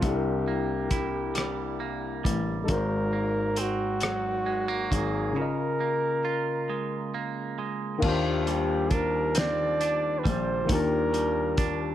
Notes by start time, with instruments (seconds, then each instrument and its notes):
Already playing: clean electric guitar F3 A3 D4
0.00 grand piano C2, tine electric piano C3 C4 D4, clean electric guitar C3, kick, closed hi-hat
0.04 tine electric piano E4, flugelhorn G4
0.08 tine electric piano A4
0.15 tine electric piano A#4
0.48 clean electric guitar A#3
0.91 clean electric guitar E4, kick, closed hi-hat
1.35 clean electric guitar G3, cross-stick, closed hi-hat
1.80 clean electric guitar A#3
2.24 grand piano A1, clean electric guitar G3, kick, closed hi-hat
2.64 tine electric piano G#3 D#4, flugelhorn A4
2.68 grand piano G#1, clean electric guitar G#2, tine electric piano F#4 A#4, flugelhorn A#4, kick, closed hi-hat
2.74 tine electric piano C5
3.13 clean electric guitar A#3
3.56 clean electric guitar C4, flugelhorn F#4, closed hi-hat
4.00 clean electric guitar F#3, cross-stick, closed hi-hat
4.46 clean electric guitar G#3
4.68 clean electric guitar A#3
4.91 grand piano G#1, clean electric guitar F#3, flugelhorn G#4, kick, closed hi-hat
5.32 tine electric piano C#3 C#4
5.36 clean electric guitar C#3, tine electric piano F4 A#4, flugelhorn A#4
5.42 tine electric piano D#5
5.80 clean electric guitar A#3
6.25 clean electric guitar F4
6.70 clean electric guitar G#3
7.14 clean electric guitar A#3
7.58 clean electric guitar G#3
7.98 tine electric piano D#3 A#3, crash
8.02 grand piano D#2, clean electric guitar D#3, tine electric piano D4 F4 G4, kick
8.08 tine electric piano C5
8.47 clean electric guitar G3, flugelhorn G4, closed hi-hat
8.91 clean electric guitar D4, flugelhorn A#4, kick, closed hi-hat
9.35 clean electric guitar C4, flugelhorn D5, snare, closed hi-hat
9.81 clean electric guitar D4, closed hi-hat
10.19 flugelhorn B4
10.24 grand piano A#1, clean electric guitar G3, kick, closed hi-hat
10.29 flugelhorn C5
10.65 tine electric piano D#3 A#3
10.69 grand piano D#2, clean electric guitar D#3, tine electric piano D4 F4 G4, kick, closed hi-hat
10.73 flugelhorn A#4, tine electric piano D5
11.13 clean electric guitar G3, closed hi-hat
11.58 clean electric guitar D4, kick, closed hi-hat